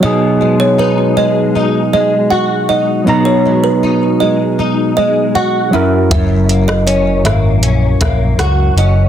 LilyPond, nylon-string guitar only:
\new Staff \with { instrumentName = "Nylon-string guitar" } { \time 4/4 \key b \major \tempo 4 = 79 b,8 gis8 dis'8 gis8 dis'8 gis8 fis'8 dis'8 | b,8 gis8 dis'8 gis8 dis'8 gis8 fis'8 fis,8 | fis,8 ais8 cis'8 ais8 cis'8 ais8 fis'8 cis'8 | }